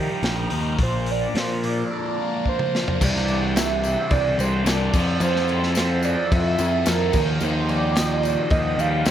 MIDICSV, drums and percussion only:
0, 0, Header, 1, 2, 480
1, 0, Start_track
1, 0, Tempo, 552995
1, 681, Time_signature, 4, 2, 24, 8
1, 7907, End_track
2, 0, Start_track
2, 0, Title_t, "Drums"
2, 199, Note_on_c, 9, 46, 55
2, 210, Note_on_c, 9, 38, 85
2, 286, Note_off_c, 9, 46, 0
2, 296, Note_off_c, 9, 38, 0
2, 436, Note_on_c, 9, 46, 45
2, 523, Note_off_c, 9, 46, 0
2, 682, Note_on_c, 9, 36, 98
2, 683, Note_on_c, 9, 46, 58
2, 769, Note_off_c, 9, 36, 0
2, 769, Note_off_c, 9, 46, 0
2, 923, Note_on_c, 9, 46, 47
2, 1010, Note_off_c, 9, 46, 0
2, 1175, Note_on_c, 9, 46, 62
2, 1185, Note_on_c, 9, 38, 89
2, 1262, Note_off_c, 9, 46, 0
2, 1272, Note_off_c, 9, 38, 0
2, 1420, Note_on_c, 9, 46, 41
2, 1506, Note_off_c, 9, 46, 0
2, 2131, Note_on_c, 9, 36, 45
2, 2218, Note_off_c, 9, 36, 0
2, 2251, Note_on_c, 9, 47, 52
2, 2338, Note_off_c, 9, 47, 0
2, 2386, Note_on_c, 9, 38, 68
2, 2473, Note_off_c, 9, 38, 0
2, 2499, Note_on_c, 9, 43, 73
2, 2586, Note_off_c, 9, 43, 0
2, 2614, Note_on_c, 9, 36, 98
2, 2616, Note_on_c, 9, 54, 75
2, 2618, Note_on_c, 9, 49, 117
2, 2618, Note_on_c, 9, 57, 78
2, 2701, Note_off_c, 9, 36, 0
2, 2703, Note_off_c, 9, 54, 0
2, 2705, Note_off_c, 9, 49, 0
2, 2705, Note_off_c, 9, 57, 0
2, 2743, Note_on_c, 9, 38, 33
2, 2830, Note_off_c, 9, 38, 0
2, 2849, Note_on_c, 9, 57, 63
2, 2863, Note_on_c, 9, 54, 30
2, 2936, Note_off_c, 9, 57, 0
2, 2949, Note_off_c, 9, 54, 0
2, 3089, Note_on_c, 9, 57, 75
2, 3099, Note_on_c, 9, 38, 111
2, 3100, Note_on_c, 9, 54, 110
2, 3175, Note_off_c, 9, 57, 0
2, 3186, Note_off_c, 9, 38, 0
2, 3187, Note_off_c, 9, 54, 0
2, 3328, Note_on_c, 9, 57, 60
2, 3338, Note_on_c, 9, 54, 78
2, 3415, Note_off_c, 9, 57, 0
2, 3424, Note_off_c, 9, 54, 0
2, 3563, Note_on_c, 9, 57, 80
2, 3568, Note_on_c, 9, 36, 101
2, 3582, Note_on_c, 9, 54, 29
2, 3650, Note_off_c, 9, 57, 0
2, 3654, Note_off_c, 9, 36, 0
2, 3669, Note_off_c, 9, 54, 0
2, 3808, Note_on_c, 9, 57, 63
2, 3819, Note_on_c, 9, 54, 86
2, 3895, Note_off_c, 9, 57, 0
2, 3906, Note_off_c, 9, 54, 0
2, 4045, Note_on_c, 9, 54, 93
2, 4046, Note_on_c, 9, 57, 70
2, 4056, Note_on_c, 9, 38, 113
2, 4132, Note_off_c, 9, 54, 0
2, 4133, Note_off_c, 9, 57, 0
2, 4143, Note_off_c, 9, 38, 0
2, 4283, Note_on_c, 9, 57, 101
2, 4285, Note_on_c, 9, 36, 102
2, 4292, Note_on_c, 9, 54, 75
2, 4370, Note_off_c, 9, 57, 0
2, 4372, Note_off_c, 9, 36, 0
2, 4379, Note_off_c, 9, 54, 0
2, 4514, Note_on_c, 9, 57, 83
2, 4522, Note_on_c, 9, 54, 80
2, 4601, Note_off_c, 9, 57, 0
2, 4609, Note_off_c, 9, 54, 0
2, 4652, Note_on_c, 9, 38, 33
2, 4739, Note_off_c, 9, 38, 0
2, 4754, Note_on_c, 9, 54, 30
2, 4765, Note_on_c, 9, 57, 63
2, 4841, Note_off_c, 9, 54, 0
2, 4852, Note_off_c, 9, 57, 0
2, 4886, Note_on_c, 9, 38, 33
2, 4973, Note_off_c, 9, 38, 0
2, 4991, Note_on_c, 9, 54, 106
2, 5002, Note_on_c, 9, 57, 76
2, 5012, Note_on_c, 9, 38, 109
2, 5078, Note_off_c, 9, 54, 0
2, 5089, Note_off_c, 9, 57, 0
2, 5099, Note_off_c, 9, 38, 0
2, 5230, Note_on_c, 9, 54, 71
2, 5247, Note_on_c, 9, 57, 63
2, 5317, Note_off_c, 9, 54, 0
2, 5334, Note_off_c, 9, 57, 0
2, 5484, Note_on_c, 9, 36, 98
2, 5485, Note_on_c, 9, 54, 31
2, 5485, Note_on_c, 9, 57, 81
2, 5571, Note_off_c, 9, 36, 0
2, 5572, Note_off_c, 9, 54, 0
2, 5572, Note_off_c, 9, 57, 0
2, 5715, Note_on_c, 9, 54, 86
2, 5717, Note_on_c, 9, 57, 66
2, 5802, Note_off_c, 9, 54, 0
2, 5804, Note_off_c, 9, 57, 0
2, 5951, Note_on_c, 9, 57, 77
2, 5952, Note_on_c, 9, 54, 98
2, 5961, Note_on_c, 9, 38, 101
2, 6037, Note_off_c, 9, 57, 0
2, 6039, Note_off_c, 9, 54, 0
2, 6048, Note_off_c, 9, 38, 0
2, 6190, Note_on_c, 9, 54, 74
2, 6191, Note_on_c, 9, 57, 104
2, 6197, Note_on_c, 9, 36, 100
2, 6277, Note_off_c, 9, 54, 0
2, 6278, Note_off_c, 9, 57, 0
2, 6284, Note_off_c, 9, 36, 0
2, 6427, Note_on_c, 9, 54, 75
2, 6438, Note_on_c, 9, 57, 72
2, 6514, Note_off_c, 9, 54, 0
2, 6525, Note_off_c, 9, 57, 0
2, 6671, Note_on_c, 9, 54, 29
2, 6675, Note_on_c, 9, 57, 61
2, 6757, Note_off_c, 9, 54, 0
2, 6762, Note_off_c, 9, 57, 0
2, 6905, Note_on_c, 9, 57, 79
2, 6915, Note_on_c, 9, 38, 109
2, 6918, Note_on_c, 9, 54, 103
2, 6992, Note_off_c, 9, 57, 0
2, 7002, Note_off_c, 9, 38, 0
2, 7005, Note_off_c, 9, 54, 0
2, 7145, Note_on_c, 9, 57, 60
2, 7162, Note_on_c, 9, 54, 79
2, 7232, Note_off_c, 9, 57, 0
2, 7248, Note_off_c, 9, 54, 0
2, 7380, Note_on_c, 9, 57, 77
2, 7388, Note_on_c, 9, 36, 101
2, 7401, Note_on_c, 9, 54, 31
2, 7467, Note_off_c, 9, 57, 0
2, 7475, Note_off_c, 9, 36, 0
2, 7488, Note_off_c, 9, 54, 0
2, 7628, Note_on_c, 9, 57, 60
2, 7635, Note_on_c, 9, 54, 83
2, 7715, Note_off_c, 9, 57, 0
2, 7722, Note_off_c, 9, 54, 0
2, 7858, Note_on_c, 9, 57, 72
2, 7860, Note_on_c, 9, 54, 91
2, 7868, Note_on_c, 9, 38, 97
2, 7907, Note_off_c, 9, 38, 0
2, 7907, Note_off_c, 9, 54, 0
2, 7907, Note_off_c, 9, 57, 0
2, 7907, End_track
0, 0, End_of_file